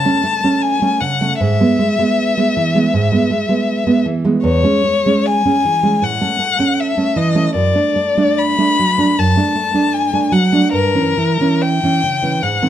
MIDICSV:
0, 0, Header, 1, 3, 480
1, 0, Start_track
1, 0, Tempo, 773196
1, 872, Time_signature, 4, 2, 24, 8
1, 1353, Tempo, 755668
1, 2793, Tempo, 817439
1, 3273, Tempo, 763359
1, 4713, Tempo, 826446
1, 5193, Tempo, 783290
1, 6633, Tempo, 882353
1, 7113, Tempo, 803213
1, 7757, End_track
2, 0, Start_track
2, 0, Title_t, "Violin"
2, 0, Program_c, 0, 40
2, 0, Note_on_c, 0, 81, 53
2, 381, Note_on_c, 0, 80, 55
2, 391, Note_off_c, 0, 81, 0
2, 622, Note_on_c, 0, 78, 54
2, 631, Note_off_c, 0, 80, 0
2, 868, Note_off_c, 0, 78, 0
2, 873, Note_on_c, 0, 76, 56
2, 2523, Note_off_c, 0, 76, 0
2, 2794, Note_on_c, 0, 73, 54
2, 3271, Note_on_c, 0, 80, 59
2, 3280, Note_off_c, 0, 73, 0
2, 3759, Note_on_c, 0, 78, 56
2, 3768, Note_off_c, 0, 80, 0
2, 4236, Note_on_c, 0, 76, 50
2, 4246, Note_off_c, 0, 78, 0
2, 4471, Note_on_c, 0, 75, 54
2, 4481, Note_off_c, 0, 76, 0
2, 4712, Note_off_c, 0, 75, 0
2, 4716, Note_on_c, 0, 74, 51
2, 5194, Note_on_c, 0, 83, 63
2, 5204, Note_off_c, 0, 74, 0
2, 5687, Note_on_c, 0, 81, 50
2, 5696, Note_off_c, 0, 83, 0
2, 6141, Note_on_c, 0, 80, 52
2, 6151, Note_off_c, 0, 81, 0
2, 6382, Note_on_c, 0, 78, 53
2, 6391, Note_off_c, 0, 80, 0
2, 6632, Note_off_c, 0, 78, 0
2, 6635, Note_on_c, 0, 70, 50
2, 7116, Note_on_c, 0, 79, 53
2, 7125, Note_off_c, 0, 70, 0
2, 7598, Note_on_c, 0, 78, 46
2, 7607, Note_off_c, 0, 79, 0
2, 7757, Note_off_c, 0, 78, 0
2, 7757, End_track
3, 0, Start_track
3, 0, Title_t, "Nylon-string guitar"
3, 0, Program_c, 1, 24
3, 32, Note_on_c, 1, 57, 32
3, 36, Note_on_c, 1, 61, 36
3, 139, Note_off_c, 1, 57, 0
3, 140, Note_off_c, 1, 61, 0
3, 146, Note_on_c, 1, 57, 34
3, 264, Note_off_c, 1, 57, 0
3, 272, Note_on_c, 1, 57, 31
3, 275, Note_on_c, 1, 61, 34
3, 487, Note_off_c, 1, 57, 0
3, 488, Note_off_c, 1, 61, 0
3, 508, Note_on_c, 1, 57, 33
3, 512, Note_on_c, 1, 61, 37
3, 618, Note_off_c, 1, 57, 0
3, 619, Note_off_c, 1, 61, 0
3, 628, Note_on_c, 1, 49, 35
3, 752, Note_on_c, 1, 57, 33
3, 756, Note_on_c, 1, 61, 35
3, 823, Note_off_c, 1, 49, 0
3, 860, Note_off_c, 1, 57, 0
3, 863, Note_off_c, 1, 61, 0
3, 871, Note_on_c, 1, 44, 45
3, 989, Note_off_c, 1, 44, 0
3, 995, Note_on_c, 1, 56, 29
3, 999, Note_on_c, 1, 59, 33
3, 1103, Note_off_c, 1, 56, 0
3, 1104, Note_off_c, 1, 59, 0
3, 1110, Note_on_c, 1, 56, 37
3, 1226, Note_off_c, 1, 56, 0
3, 1234, Note_on_c, 1, 56, 34
3, 1239, Note_on_c, 1, 59, 37
3, 1451, Note_off_c, 1, 56, 0
3, 1454, Note_off_c, 1, 59, 0
3, 1476, Note_on_c, 1, 56, 33
3, 1480, Note_on_c, 1, 59, 35
3, 1585, Note_off_c, 1, 56, 0
3, 1587, Note_off_c, 1, 59, 0
3, 1599, Note_on_c, 1, 52, 34
3, 1714, Note_on_c, 1, 56, 34
3, 1718, Note_on_c, 1, 59, 37
3, 1789, Note_off_c, 1, 52, 0
3, 1822, Note_off_c, 1, 56, 0
3, 1823, Note_off_c, 1, 59, 0
3, 1834, Note_on_c, 1, 44, 38
3, 1949, Note_off_c, 1, 44, 0
3, 1951, Note_on_c, 1, 56, 35
3, 1957, Note_on_c, 1, 59, 37
3, 2058, Note_off_c, 1, 56, 0
3, 2061, Note_off_c, 1, 59, 0
3, 2065, Note_on_c, 1, 56, 33
3, 2177, Note_off_c, 1, 56, 0
3, 2184, Note_on_c, 1, 56, 36
3, 2188, Note_on_c, 1, 59, 35
3, 2402, Note_off_c, 1, 56, 0
3, 2403, Note_off_c, 1, 59, 0
3, 2425, Note_on_c, 1, 56, 33
3, 2426, Note_on_c, 1, 59, 35
3, 2535, Note_off_c, 1, 56, 0
3, 2535, Note_off_c, 1, 59, 0
3, 2544, Note_on_c, 1, 52, 36
3, 2665, Note_on_c, 1, 56, 33
3, 2668, Note_on_c, 1, 59, 39
3, 2741, Note_off_c, 1, 52, 0
3, 2778, Note_off_c, 1, 59, 0
3, 2779, Note_off_c, 1, 56, 0
3, 2787, Note_on_c, 1, 40, 42
3, 2903, Note_off_c, 1, 40, 0
3, 2903, Note_on_c, 1, 56, 32
3, 2907, Note_on_c, 1, 61, 34
3, 3015, Note_off_c, 1, 56, 0
3, 3016, Note_off_c, 1, 61, 0
3, 3026, Note_on_c, 1, 56, 36
3, 3146, Note_off_c, 1, 56, 0
3, 3153, Note_on_c, 1, 56, 35
3, 3157, Note_on_c, 1, 61, 40
3, 3372, Note_off_c, 1, 56, 0
3, 3373, Note_off_c, 1, 61, 0
3, 3393, Note_on_c, 1, 56, 34
3, 3393, Note_on_c, 1, 61, 37
3, 3504, Note_off_c, 1, 61, 0
3, 3505, Note_off_c, 1, 56, 0
3, 3514, Note_on_c, 1, 52, 34
3, 3629, Note_on_c, 1, 56, 32
3, 3632, Note_on_c, 1, 61, 38
3, 3707, Note_off_c, 1, 52, 0
3, 3741, Note_off_c, 1, 56, 0
3, 3742, Note_off_c, 1, 61, 0
3, 3749, Note_on_c, 1, 45, 45
3, 3868, Note_off_c, 1, 45, 0
3, 3868, Note_on_c, 1, 57, 35
3, 3871, Note_on_c, 1, 61, 39
3, 3972, Note_off_c, 1, 57, 0
3, 3980, Note_off_c, 1, 61, 0
3, 3980, Note_on_c, 1, 57, 31
3, 4098, Note_off_c, 1, 57, 0
3, 4105, Note_on_c, 1, 57, 32
3, 4110, Note_on_c, 1, 61, 36
3, 4324, Note_off_c, 1, 57, 0
3, 4325, Note_off_c, 1, 61, 0
3, 4347, Note_on_c, 1, 57, 32
3, 4350, Note_on_c, 1, 61, 35
3, 4457, Note_off_c, 1, 57, 0
3, 4458, Note_off_c, 1, 61, 0
3, 4466, Note_on_c, 1, 52, 37
3, 4586, Note_on_c, 1, 57, 33
3, 4589, Note_on_c, 1, 61, 33
3, 4661, Note_off_c, 1, 52, 0
3, 4697, Note_off_c, 1, 57, 0
3, 4699, Note_off_c, 1, 61, 0
3, 4706, Note_on_c, 1, 42, 42
3, 4821, Note_off_c, 1, 42, 0
3, 4823, Note_on_c, 1, 57, 29
3, 4825, Note_on_c, 1, 62, 34
3, 4935, Note_off_c, 1, 57, 0
3, 4935, Note_off_c, 1, 62, 0
3, 4948, Note_on_c, 1, 57, 34
3, 5066, Note_off_c, 1, 57, 0
3, 5073, Note_on_c, 1, 57, 34
3, 5076, Note_on_c, 1, 62, 38
3, 5293, Note_off_c, 1, 57, 0
3, 5294, Note_off_c, 1, 62, 0
3, 5317, Note_on_c, 1, 57, 32
3, 5321, Note_on_c, 1, 62, 38
3, 5426, Note_off_c, 1, 57, 0
3, 5427, Note_off_c, 1, 62, 0
3, 5446, Note_on_c, 1, 54, 35
3, 5559, Note_on_c, 1, 57, 32
3, 5564, Note_on_c, 1, 62, 35
3, 5631, Note_off_c, 1, 54, 0
3, 5665, Note_off_c, 1, 57, 0
3, 5666, Note_off_c, 1, 62, 0
3, 5686, Note_on_c, 1, 42, 35
3, 5795, Note_off_c, 1, 42, 0
3, 5798, Note_on_c, 1, 57, 33
3, 5801, Note_on_c, 1, 62, 36
3, 5902, Note_off_c, 1, 57, 0
3, 5903, Note_off_c, 1, 62, 0
3, 5912, Note_on_c, 1, 57, 31
3, 6019, Note_off_c, 1, 57, 0
3, 6026, Note_on_c, 1, 57, 30
3, 6028, Note_on_c, 1, 62, 36
3, 6240, Note_off_c, 1, 57, 0
3, 6240, Note_off_c, 1, 62, 0
3, 6267, Note_on_c, 1, 57, 33
3, 6268, Note_on_c, 1, 62, 34
3, 6374, Note_off_c, 1, 57, 0
3, 6374, Note_off_c, 1, 62, 0
3, 6380, Note_on_c, 1, 54, 34
3, 6506, Note_on_c, 1, 57, 31
3, 6509, Note_on_c, 1, 62, 34
3, 6580, Note_off_c, 1, 54, 0
3, 6620, Note_off_c, 1, 57, 0
3, 6622, Note_off_c, 1, 62, 0
3, 6630, Note_on_c, 1, 43, 38
3, 6745, Note_off_c, 1, 43, 0
3, 6750, Note_on_c, 1, 52, 27
3, 6753, Note_on_c, 1, 61, 31
3, 6861, Note_off_c, 1, 52, 0
3, 6862, Note_off_c, 1, 61, 0
3, 6874, Note_on_c, 1, 52, 31
3, 6995, Note_off_c, 1, 52, 0
3, 7001, Note_on_c, 1, 52, 32
3, 7004, Note_on_c, 1, 61, 35
3, 7217, Note_off_c, 1, 52, 0
3, 7217, Note_off_c, 1, 61, 0
3, 7244, Note_on_c, 1, 52, 30
3, 7250, Note_on_c, 1, 61, 33
3, 7348, Note_off_c, 1, 52, 0
3, 7351, Note_off_c, 1, 61, 0
3, 7364, Note_on_c, 1, 49, 29
3, 7479, Note_on_c, 1, 52, 28
3, 7481, Note_on_c, 1, 61, 32
3, 7548, Note_off_c, 1, 49, 0
3, 7583, Note_off_c, 1, 52, 0
3, 7584, Note_off_c, 1, 61, 0
3, 7598, Note_on_c, 1, 44, 37
3, 7712, Note_off_c, 1, 44, 0
3, 7717, Note_on_c, 1, 51, 30
3, 7719, Note_on_c, 1, 60, 33
3, 7757, Note_off_c, 1, 51, 0
3, 7757, Note_off_c, 1, 60, 0
3, 7757, End_track
0, 0, End_of_file